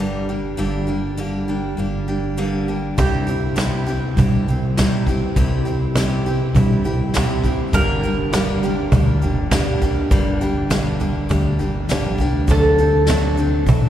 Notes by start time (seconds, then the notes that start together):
Already playing: G1
0.00 G2 D3 G3 A#3 D4 G4
0.29 G3 A#3 D4 G4
0.57 G1 G2 D3 G3 A#3 D4 G4
0.87 G3 A#3 D4 G4
1.17 G2 D3 G3 A#3 D4 G4
1.48 G3 A#3 D4 G4
1.77 G1 G3 A#3 D4 G4
2.08 G3 A#3 D4 G4
2.37 G2 D3 G3 A#3 D4 G4
2.68 G3 A#3 D4 G4
2.98 C2 C3 G3 C4 E4 G4, kick, cajon bass, cajon slap, closed hi-hat
3.27 C4 E4 G4, cajon slap, closed hi-hat
3.56 C3 G3 C4 E4 G4, cajon slap, snare, closed hi-hat
3.74 cajon slap
3.86 C4 E4 G4, cajon slap, closed hi-hat
4.17 G2 G3 C4 E4 G4, kick, cajon bass, closed hi-hat
4.46 C2 C4 E4 G4, cajon slap, closed hi-hat
4.77 C3 G3 C4 E4 G4, cajon bass, snare, cajon slap, closed hi-hat
5.07 C4 E4 G4, kick, cajon slap, closed hi-hat
5.36 C2 C3 G3 C4 E4 G4, kick, cajon bass, cajon slap, closed hi-hat
5.65 C4 E4 G4, cajon slap, closed hi-hat
5.96 C3 G3 C4 E4 G4, cajon slap, snare, closed hi-hat
6.12 cajon slap
6.26 C4 E4 G4, cajon slap, closed hi-hat
6.54 G2 G3 C4 E4 G4, kick, cajon bass, closed hi-hat
6.84 C2 C4 E4 G4, cajon slap, closed hi-hat
7.14 C3 G3 C4 E4 G4, cajon bass, snare, cajon slap, closed hi-hat
7.44 C4 E4 G4, kick, cajon slap, closed hi-hat
7.73 G1 G2 D3 G3 A#3 D4 G4 A#4, kick, cajon bass, cajon slap, closed hi-hat
8.03 G3 A#3 D4 G4, cajon slap, closed hi-hat
8.32 G2 D3 G3 A#3 D4 G4, snare, cajon slap, closed hi-hat
8.49 cajon slap
8.62 G3 A#3 D4 G4, cajon slap, closed hi-hat
8.92 D2 G3 A#3 D4 G4, cajon bass, kick, closed hi-hat
9.21 G1 G3 A#3 D4 G4, cajon slap, closed hi-hat
9.51 G2 D3 G3 A#3 D4 G4, cajon bass, snare, cajon slap, closed hi-hat
9.81 G3 A#3 D4 G4, kick, cajon slap, closed hi-hat
10.11 G1 G2 D3 G3 A#3 D4 G4, kick, cajon bass, cajon slap, closed hi-hat
10.41 G3 A#3 D4 G4, cajon slap, closed hi-hat
10.70 G2 D3 G3 A#3 D4 G4, snare, cajon slap, closed hi-hat
10.86 cajon slap
11.00 G3 A#3 D4 G4, cajon bass, cajon slap, closed hi-hat
11.29 D2 G3 A#3 D4 G4, kick, cajon bass, cajon slap, closed hi-hat
11.59 G1 G3 A#3 D4 G4, cajon slap, closed hi-hat
11.89 G2 D3 G3 A#3 D4 G4, snare, cajon slap, closed hi-hat
12.03 A#1
12.17 C2 A#3 D4 G4, kick, closed hi-hat
12.22 G3
12.33 D2
12.47 D2 D3 F#3 C4 D4 A4, kick, cajon bass, cajon slap, closed hi-hat
12.78 C4 D4 A4, cajon slap, closed hi-hat
13.07 D3 F#3 C4 D4, snare, cajon slap, closed hi-hat
13.11 A4
13.24 cajon slap
13.37 C4 D4 A4, cajon slap, closed hi-hat
13.66 A1 F#3 C4 D4 A4, kick, cajon bass, closed hi-hat